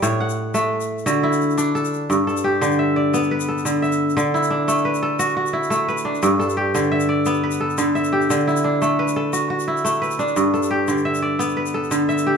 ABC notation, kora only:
X:1
M:12/8
L:1/8
Q:3/8=116
K:G
V:1 name="Kora"
[^cd] f3 z2 F E3 A2- | A A G2 e d2 B A2 e2- | e E D2 B A2 F E2 B D- | D A G2 e d2 B A2 e G- |
G E D2 B A2 F E2 B D- | D A G2 e d2 B A2 e G |]
V:2 name="Kora" clef=bass
A,,2 z A,2 z D,2 z D2 z | G,,2 z D,2 z B,2 z D,2 z | D,2 z A,2 z F2 z A,2 z | G,,2 z D,2 z B,2 z D,2 z |
D,2 z A,2 z F2 z A,2 z | G,,2 z D,2 z B,2 z D,2 z |]